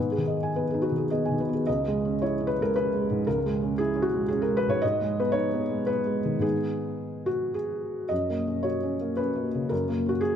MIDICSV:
0, 0, Header, 1, 2, 480
1, 0, Start_track
1, 0, Tempo, 560224
1, 1431, Time_signature, 3, 2, 24, 8
1, 1894, Tempo, 522648
1, 4774, Tempo, 550964
1, 7654, Tempo, 526316
1, 9210, End_track
2, 0, Start_track
2, 0, Title_t, "Felt piano"
2, 0, Program_c, 0, 0
2, 0, Note_on_c, 0, 44, 43
2, 0, Note_on_c, 0, 71, 37
2, 101, Note_on_c, 0, 68, 43
2, 119, Control_c, 0, 64, 127
2, 153, Note_on_c, 0, 51, 38
2, 172, Note_off_c, 0, 71, 0
2, 235, Note_on_c, 0, 75, 38
2, 294, Note_off_c, 0, 68, 0
2, 368, Note_on_c, 0, 80, 39
2, 406, Note_off_c, 0, 51, 0
2, 422, Note_off_c, 0, 75, 0
2, 476, Note_on_c, 0, 59, 35
2, 481, Note_on_c, 0, 71, 41
2, 550, Note_off_c, 0, 80, 0
2, 603, Note_on_c, 0, 68, 37
2, 633, Note_on_c, 0, 63, 38
2, 667, Note_off_c, 0, 71, 0
2, 700, Note_on_c, 0, 66, 52
2, 708, Note_on_c, 0, 71, 38
2, 730, Note_off_c, 0, 59, 0
2, 785, Note_on_c, 0, 51, 33
2, 789, Note_off_c, 0, 68, 0
2, 837, Note_on_c, 0, 68, 36
2, 889, Note_off_c, 0, 63, 0
2, 902, Note_off_c, 0, 71, 0
2, 932, Note_off_c, 0, 68, 0
2, 945, Note_on_c, 0, 68, 47
2, 947, Note_off_c, 0, 66, 0
2, 952, Note_on_c, 0, 75, 39
2, 955, Note_on_c, 0, 59, 34
2, 1046, Note_off_c, 0, 51, 0
2, 1075, Note_on_c, 0, 80, 37
2, 1125, Note_on_c, 0, 51, 33
2, 1146, Note_off_c, 0, 75, 0
2, 1199, Note_on_c, 0, 71, 39
2, 1212, Note_off_c, 0, 59, 0
2, 1268, Note_off_c, 0, 80, 0
2, 1276, Note_on_c, 0, 59, 37
2, 1303, Note_off_c, 0, 68, 0
2, 1316, Note_on_c, 0, 68, 36
2, 1375, Note_off_c, 0, 51, 0
2, 1387, Note_off_c, 0, 71, 0
2, 1399, Note_off_c, 0, 44, 0
2, 1427, Note_on_c, 0, 75, 65
2, 1432, Note_off_c, 0, 59, 0
2, 1432, Note_off_c, 0, 68, 0
2, 1445, Control_c, 0, 64, 0
2, 1448, Note_on_c, 0, 37, 42
2, 1565, Control_c, 0, 64, 127
2, 1605, Note_on_c, 0, 56, 41
2, 1756, Note_on_c, 0, 61, 36
2, 1843, Note_off_c, 0, 56, 0
2, 1892, Note_off_c, 0, 75, 0
2, 1899, Note_on_c, 0, 73, 56
2, 1910, Note_on_c, 0, 64, 38
2, 2002, Note_off_c, 0, 61, 0
2, 2069, Note_on_c, 0, 61, 38
2, 2133, Note_on_c, 0, 71, 68
2, 2143, Note_off_c, 0, 73, 0
2, 2165, Note_off_c, 0, 64, 0
2, 2251, Note_on_c, 0, 56, 36
2, 2259, Note_off_c, 0, 71, 0
2, 2272, Note_on_c, 0, 70, 68
2, 2324, Note_off_c, 0, 61, 0
2, 2388, Note_off_c, 0, 70, 0
2, 2396, Note_on_c, 0, 71, 76
2, 2410, Note_on_c, 0, 61, 39
2, 2494, Note_off_c, 0, 56, 0
2, 2562, Note_on_c, 0, 56, 35
2, 2652, Note_off_c, 0, 61, 0
2, 2712, Note_on_c, 0, 44, 41
2, 2808, Note_off_c, 0, 56, 0
2, 2835, Note_off_c, 0, 37, 0
2, 2866, Note_on_c, 0, 70, 65
2, 2868, Note_off_c, 0, 71, 0
2, 2875, Note_on_c, 0, 37, 50
2, 2879, Control_c, 0, 64, 0
2, 2962, Note_off_c, 0, 44, 0
2, 3024, Control_c, 0, 64, 127
2, 3040, Note_on_c, 0, 56, 42
2, 3188, Note_on_c, 0, 61, 38
2, 3285, Note_off_c, 0, 56, 0
2, 3335, Note_on_c, 0, 68, 73
2, 3341, Note_off_c, 0, 70, 0
2, 3355, Note_on_c, 0, 64, 39
2, 3439, Note_off_c, 0, 61, 0
2, 3493, Note_on_c, 0, 61, 45
2, 3558, Note_on_c, 0, 66, 71
2, 3576, Note_off_c, 0, 68, 0
2, 3602, Note_off_c, 0, 64, 0
2, 3662, Note_on_c, 0, 56, 39
2, 3750, Note_off_c, 0, 61, 0
2, 3798, Note_on_c, 0, 68, 64
2, 3806, Note_off_c, 0, 66, 0
2, 3817, Note_on_c, 0, 61, 45
2, 3914, Note_off_c, 0, 56, 0
2, 3921, Note_on_c, 0, 70, 61
2, 3926, Note_off_c, 0, 68, 0
2, 3985, Note_on_c, 0, 56, 36
2, 4047, Note_off_c, 0, 70, 0
2, 4059, Note_on_c, 0, 71, 77
2, 4071, Note_off_c, 0, 61, 0
2, 4159, Note_on_c, 0, 44, 41
2, 4176, Note_off_c, 0, 71, 0
2, 4176, Note_on_c, 0, 73, 80
2, 4234, Note_off_c, 0, 56, 0
2, 4263, Note_off_c, 0, 37, 0
2, 4287, Note_on_c, 0, 75, 84
2, 4294, Note_off_c, 0, 73, 0
2, 4295, Note_off_c, 0, 44, 0
2, 4309, Control_c, 0, 64, 0
2, 4309, Note_on_c, 0, 44, 53
2, 4444, Control_c, 0, 64, 127
2, 4468, Note_on_c, 0, 56, 44
2, 4631, Note_on_c, 0, 59, 37
2, 4637, Note_on_c, 0, 71, 68
2, 4650, Note_off_c, 0, 75, 0
2, 4717, Note_off_c, 0, 56, 0
2, 4749, Note_on_c, 0, 73, 80
2, 4763, Note_on_c, 0, 63, 46
2, 4766, Note_off_c, 0, 71, 0
2, 4875, Note_off_c, 0, 59, 0
2, 4937, Note_on_c, 0, 59, 41
2, 5016, Note_off_c, 0, 63, 0
2, 5079, Note_on_c, 0, 56, 38
2, 5182, Note_off_c, 0, 59, 0
2, 5226, Note_on_c, 0, 71, 70
2, 5229, Note_off_c, 0, 73, 0
2, 5235, Note_on_c, 0, 59, 38
2, 5334, Note_off_c, 0, 56, 0
2, 5394, Note_on_c, 0, 56, 37
2, 5494, Note_off_c, 0, 59, 0
2, 5563, Note_on_c, 0, 51, 36
2, 5655, Note_off_c, 0, 56, 0
2, 5669, Note_off_c, 0, 44, 0
2, 5683, Note_on_c, 0, 44, 35
2, 5691, Note_on_c, 0, 56, 31
2, 5703, Note_on_c, 0, 59, 27
2, 5707, Note_on_c, 0, 68, 63
2, 5710, Note_on_c, 0, 63, 28
2, 5716, Note_off_c, 0, 71, 0
2, 5737, Control_c, 0, 64, 0
2, 5821, Note_off_c, 0, 51, 0
2, 5878, Control_c, 0, 64, 127
2, 6442, Note_on_c, 0, 66, 58
2, 6443, Note_off_c, 0, 68, 0
2, 6686, Note_on_c, 0, 68, 51
2, 6689, Note_off_c, 0, 66, 0
2, 7123, Note_off_c, 0, 44, 0
2, 7127, Note_off_c, 0, 56, 0
2, 7133, Note_off_c, 0, 59, 0
2, 7137, Note_off_c, 0, 63, 0
2, 7161, Note_on_c, 0, 75, 63
2, 7175, Note_off_c, 0, 68, 0
2, 7180, Note_on_c, 0, 42, 37
2, 7195, Control_c, 0, 64, 0
2, 7331, Control_c, 0, 64, 127
2, 7342, Note_on_c, 0, 58, 32
2, 7498, Note_on_c, 0, 61, 29
2, 7593, Note_off_c, 0, 58, 0
2, 7632, Note_on_c, 0, 73, 52
2, 7645, Note_off_c, 0, 75, 0
2, 7645, Note_on_c, 0, 66, 35
2, 7753, Note_off_c, 0, 61, 0
2, 7814, Note_on_c, 0, 61, 33
2, 7911, Note_off_c, 0, 66, 0
2, 7977, Note_on_c, 0, 58, 31
2, 8075, Note_off_c, 0, 61, 0
2, 8124, Note_on_c, 0, 71, 63
2, 8130, Note_off_c, 0, 73, 0
2, 8140, Note_on_c, 0, 61, 37
2, 8237, Note_off_c, 0, 58, 0
2, 8294, Note_on_c, 0, 58, 31
2, 8400, Note_off_c, 0, 61, 0
2, 8469, Note_on_c, 0, 49, 34
2, 8557, Note_off_c, 0, 58, 0
2, 8590, Note_off_c, 0, 42, 0
2, 8603, Note_on_c, 0, 70, 57
2, 8616, Note_off_c, 0, 71, 0
2, 8622, Note_on_c, 0, 42, 40
2, 8640, Control_c, 0, 64, 0
2, 8723, Note_off_c, 0, 49, 0
2, 8772, Control_c, 0, 64, 127
2, 8777, Note_on_c, 0, 58, 40
2, 8935, Note_on_c, 0, 61, 34
2, 8964, Note_on_c, 0, 66, 56
2, 8968, Note_off_c, 0, 70, 0
2, 9030, Note_off_c, 0, 58, 0
2, 9072, Note_on_c, 0, 68, 70
2, 9075, Note_off_c, 0, 66, 0
2, 9089, Note_on_c, 0, 66, 38
2, 9188, Note_off_c, 0, 61, 0
2, 9210, Note_off_c, 0, 42, 0
2, 9210, Note_off_c, 0, 66, 0
2, 9210, Note_off_c, 0, 68, 0
2, 9210, End_track
0, 0, End_of_file